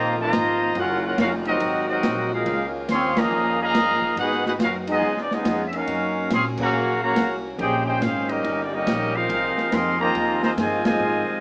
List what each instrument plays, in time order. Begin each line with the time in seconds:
Already playing: upright bass A#1, saxophone section C3 G#3 A#3 F4, trombone section D#3 F3 A#3, trumpet section F4 C5 D#5 A#5
0.18 trombone section D#3 F3 A#3, trumpet section F4 C5 D#5 A#5
0.32 upright bass G#1, snare, hi-hat pedal, ride
0.75 upright bass F#1, saxophone section D#3 F#3 C#4 F4, trombone section A#3 C#4 F#4, ride
0.79 trumpet section C#4 F4 A#4 F#5
1.04 trombone section A#3 C#4 F#4, trumpet section C#4 F4 A#4 F#5
1.18 upright bass F1, trombone section A#3 C#4 F4, trumpet section C#4 F#4 A#4 F5, snare, hi-hat pedal, ride
1.45 trombone section F#3 C4 D#4, trumpet section C4 F#4 A#4 D#5, ride
1.60 upright bass G#1, saxophone section C3 G#3 A#3 F#4, ride
1.89 trombone section F#3 C4 D#4, trumpet section C4 F#4 A#4 D#5
2.03 upright bass A#1, snare, hi-hat pedal, ride
2.32 trombone section G#3 A#3 F4, trumpet section D#4 G#4 A#4 F5
2.45 upright bass C#2, saxophone section D#3 C#4 F4, ride
2.89 upright bass D#2, trombone section C4, trumpet section G#4 C#5 F5 C6, snare, hi-hat pedal, ride
3.17 trombone section A#2 F3 A#3, trumpet section G#4 D#5 F5 A#5, snare, ride
3.31 upright bass F2
3.61 trombone section A#2 F3 A#3, trumpet section G#4 D#5 F5 A#5
3.74 upright bass G2, snare, hi-hat pedal, ride
4.02 muted upright bass stroke, kick
4.16 upright bass G#2, saxophone section G#3 B3 F#4, trombone section B3 D#4 F#4, trumpet section D#4 G#4 B4 F#5, ride
4.32 snare
4.46 trombone section B3 D#4 F#4, trumpet section D#4 G#4 B4 F#5, snare
4.59 upright bass F#2, trumpet section C#4 F#4 A#4 F5, trombone section F4, snare, hi-hat pedal, ride
4.87 trombone section G#3 B3 D#4, trumpet section F4 D#5, ride
4.91 trumpet section B3 G#4
5.01 upright bass C#2, saxophone section F3 C#4 D#4
5.17 snare
5.22 trumpet section D5
5.31 trombone section G#3 B3 D#4, trumpet section B3 F4 G#4 D#5, snare
5.45 upright bass F2, snare, hi-hat pedal, ride
5.66 trumpet section E5
5.73 trombone section A#3 C#4 D#4, trumpet section C#4 F#4 A#4 F5, ride
5.87 upright bass F#2, saxophone section F#3 A#3 F#4, ride
6.30 upright bass A#2, trombone section C4, trumpet section G#4 C#5 F5 C6, snare, hi-hat pedal, ride
6.57 trombone section C#3 F#3 A#3, trumpet section F#4, kick, crash
6.62 trumpet section C#5 F5 A#5
6.73 upright bass A#1
7.03 trombone section C#3 F#3 A#3, trumpet section F#4 C#5 F5 A#5
7.16 upright bass C2, snare, hi-hat pedal, ride
7.58 upright bass A#1, saxophone section G#3 A#3 C4 C#4, trumpet section D#4 G#4 C5 G5, trombone section G4, ride
7.86 trumpet section D#4 G#4 C5 G5, trombone section G4
8.01 upright bass G#1, trombone section G#3 C#4 F4, trumpet section C#4 G#4 C5 F5, snare, hi-hat pedal, ride
8.29 trombone section G3 A#3 D#4, trumpet section C#4 G4 A#4 D#5, ride
8.44 upright bass G1, saxophone section C#3 G3 D#4, ride
8.64 trumpet section D5
8.73 trombone section G3 A#3 D#4, trumpet section C#4 G4 A#4 D#5
8.87 upright bass A#1, snare, hi-hat pedal, ride
9.15 trombone section F3 C4 F4, trumpet section D#4 A#4 C5 F5
9.29 upright bass C2, saxophone section C3 F4 G#4, ride
9.57 muted upright bass stroke, snare
9.72 upright bass F2, trombone section D#3 F3 C4, trumpet section A#4 D#5 F5 C6, snare, hi-hat pedal, ride
10.00 trombone section D#3 F3 A#3, trumpet section F4 C5 D#5 A#5
10.15 upright bass D#2, ride
10.43 trombone section D#3 F3 A#3, trumpet section F4 C5 D#5 A#5, snare
10.57 upright bass G2, trombone section D#3 F3 G#3, trumpet section F4 C5 D#5 G#5, snare, hi-hat pedal, ride
10.85 trombone section D#3 F3 G#3, trumpet section F4 C5 D#5 G#5, snare, ride
11.00 upright bass G#2
11.28 muted upright bass stroke